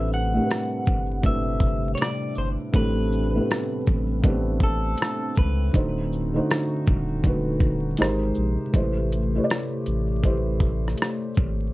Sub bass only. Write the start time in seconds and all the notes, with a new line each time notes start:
Already playing: A1
0.88 G1
2.37 G1
2.74 A1
3.88 A1
5.38 C#2
5.74 D1
6.88 D#1
8.00 G#1
8.37 A#1
8.74 A1
9.87 A1
11.38 G#1